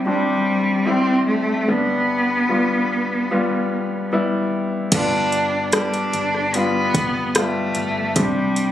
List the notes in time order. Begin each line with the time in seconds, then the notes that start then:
Already playing: C2 G2 G3 C4 E4
0.06 G3 C4 D4
0.87 G3 C4 E4
1.27 A3
1.68 G2 D3 G3 B3 D4
2.49 G3 B3 F4
3.31 G3 B3 F4
4.13 G3 B3 E4
4.92 G1 G2 D3 G3 B3 D4 F4, kick, closed hi-hat, crash
5.32 closed hi-hat
5.72 G3 B3 D4 G4, cross-stick, closed hi-hat
5.94 closed hi-hat
6.13 G1, closed hi-hat
6.35 cross-stick
6.54 G3 B3 F4, closed hi-hat
6.94 G1, kick, closed hi-hat
7.35 G3 A3 B3 F4, cross-stick, closed hi-hat
7.75 G1, closed hi-hat
8.16 C2 G2 G3 C4 D4 G4, kick, closed hi-hat
8.56 closed hi-hat